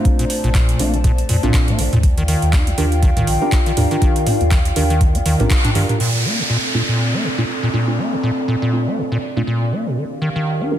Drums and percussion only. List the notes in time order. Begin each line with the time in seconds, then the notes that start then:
0.05 kick, closed hi-hat
0.19 closed hi-hat
0.30 open hi-hat
0.44 closed hi-hat
0.55 kick, clap, closed hi-hat
0.69 closed hi-hat
0.79 open hi-hat
0.94 closed hi-hat
1.04 kick, closed hi-hat
1.18 closed hi-hat
1.29 open hi-hat
1.43 closed hi-hat, mid tom
1.54 kick, clap, closed hi-hat
1.68 closed hi-hat, mid tom
1.79 open hi-hat
1.93 closed hi-hat, mid tom
2.03 kick, closed hi-hat
2.18 closed hi-hat
2.28 open hi-hat
2.42 closed hi-hat
2.53 kick, clap, closed hi-hat
2.67 closed hi-hat
2.78 open hi-hat
2.92 closed hi-hat
3.03 kick, closed hi-hat
3.17 closed hi-hat, mid tom
3.27 open hi-hat
3.52 kick, clap, closed hi-hat
3.66 closed hi-hat
3.77 mid tom, open hi-hat
3.91 closed hi-hat
4.02 kick, closed hi-hat
4.16 closed hi-hat
4.27 mid tom, open hi-hat
4.41 closed hi-hat
4.51 kick, clap, closed hi-hat
4.65 closed hi-hat
4.76 open hi-hat
4.90 closed hi-hat
5.01 kick, closed hi-hat
5.15 closed hi-hat
5.26 open hi-hat
5.40 closed hi-hat, mid tom
5.50 kick, clap, closed hi-hat
5.65 closed hi-hat, mid tom
5.75 open hi-hat
5.89 closed hi-hat, mid tom
6.00 crash